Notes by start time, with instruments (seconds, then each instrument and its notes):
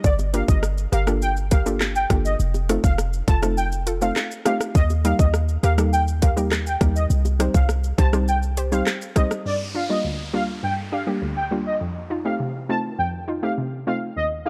0.04 808-style bass G1, soft synth lead D5, kick, shaker
0.19 high bongo, shaker
0.34 synth pluck A#3 D4 F4 G4 A#4, soft synth lead F5, closed hi-hat, high bongo, shaker
0.48 808-style bass G1, soft synth lead D#5, kick, shaker
0.63 cross-stick, shaker
0.78 shaker
0.92 808-style bass G1, synth pluck G4 A#4, soft synth lead F5, closed hi-hat, shaker
1.07 synth pluck A#3 D4 F4 G4 A4, cross-stick, shaker
1.22 soft synth lead G5, shaker
1.37 shaker
1.51 synth pluck G4 A#4, soft synth lead F5, kick, closed hi-hat, shaker
1.66 synth pluck A#3 D4 F4 G4 A4, shaker
1.81 cross-stick, clap, high bongo, shaker
1.95 soft synth lead G5, shaker
2.10 808-style bass G1, synth pluck A#3 D4 F4 G4 A4, kick, cross-stick, closed hi-hat, high bongo, low bongo, shaker
2.25 soft synth lead D#5, shaker
2.40 808-style bass F1, shaker
2.54 high bongo, shaker
2.69 synth pluck A3 C4 D#4 F4 A4, cross-stick, closed hi-hat, high bongo, shaker
2.84 808-style bass F1, soft synth lead F5, kick, shaker
2.98 cross-stick, shaker
3.13 shaker
3.28 808-style bass F1, synth pluck F4 A4, soft synth lead A5, kick, closed hi-hat, shaker
3.42 synth pluck A3 C4 D#4 F4 A4, cross-stick, shaker
3.57 soft synth lead G5, shaker
3.72 shaker
3.87 synth pluck F4 A4, closed hi-hat, shaker
4.01 synth pluck A3 C4 D#4 F4 A4, soft synth lead F5, shaker
4.16 cross-stick, clap, high bongo, shaker
4.31 shaker
4.45 synth pluck A3 C4 D#4 F4 G4, soft synth lead F5, cross-stick, closed hi-hat, high bongo, low bongo, shaker
4.61 cross-stick, shaker
4.75 808-style bass D#2, soft synth lead D#5, kick, shaker
4.90 high bongo, shaker
5.04 synth pluck G3 A#3 D#4 G4 A#4, soft synth lead F5, closed hi-hat, high bongo, shaker
5.19 808-style bass D#2, soft synth lead D#5, kick, shaker
5.34 cross-stick, shaker
5.49 shaker
5.63 808-style bass D#2, synth pluck G4 A#4, soft synth lead F5, closed hi-hat, shaker
5.78 synth pluck G3 A#3 D#4 G4 A4, cross-stick, shaker
5.93 soft synth lead G5, shaker
6.08 shaker
6.22 synth pluck G4 A#4, soft synth lead F5, kick, closed hi-hat, shaker
6.37 synth pluck G3 A#3 D#4 G4 A#4, shaker
6.52 cross-stick, clap, high bongo, shaker
6.66 soft synth lead G5, shaker
6.81 808-style bass D#2, synth pluck G3 A#3 D#4 G4 A#4, kick, cross-stick, closed hi-hat, high bongo, low bongo, shaker
6.96 soft synth lead D#5, shaker
7.10 808-style bass C2, shaker
7.25 high bongo, shaker
7.39 synth pluck G3 C4 D#4 G4 C5, cross-stick, closed hi-hat, high bongo, shaker
7.54 808-style bass C2, soft synth lead F5, kick, shaker
7.69 cross-stick, shaker
7.84 shaker
7.98 808-style bass C2, synth pluck G4 C5, soft synth lead A5, kick, closed hi-hat, low bongo, shaker
8.13 synth pluck G3 C4 D#4 G4 C5, cross-stick, shaker
8.28 soft synth lead G5, shaker
8.43 shaker
8.57 synth pluck G4 C5, closed hi-hat, shaker
8.72 synth pluck G3 C4 D#4 G4 C5, soft synth lead F5, shaker
8.87 cross-stick, clap, high bongo, shaker
9.02 shaker
9.16 synth pluck G3 C4 D#4 G4 C5, soft synth lead D#5, kick, cross-stick, closed hi-hat, high bongo, low bongo, shaker
9.31 cross-stick, shaker
9.46 synth pluck G2, soft synth lead D5, downlifter
9.75 synth pluck D4 F4, soft synth lead F5
9.89 synth pluck G3 A#3 D4 F4, soft synth lead D#5
10.04 synth pluck D2
10.33 synth pluck G3 A#3 D4 F4, soft synth lead F5
10.63 synth pluck G2, soft synth lead G5
10.92 synth pluck D4 G4, soft synth lead F5
11.07 synth pluck G3 A#3 D4 G4
11.22 synth pluck D2
11.37 soft synth lead G5
11.51 synth pluck G3 A#3 D4 F4
11.66 soft synth lead D#5
11.81 synth pluck F2
12.10 synth pluck D#4 F4
12.25 synth pluck A3 C4 D#4 G4, soft synth lead F5
12.40 synth pluck C3
12.69 synth pluck A3 C4 D#4 F4, soft synth lead A5
12.98 synth pluck F2, soft synth lead G5
13.28 synth pluck D#4 F4
13.43 synth pluck A3 C4 D#4 G4, soft synth lead F5
13.58 synth pluck C3
13.87 synth pluck A3 C4 D#4 F4, soft synth lead F5
14.16 synth pluck D#2, soft synth lead D#5
14.45 synth pluck D#4 G4, soft synth lead F5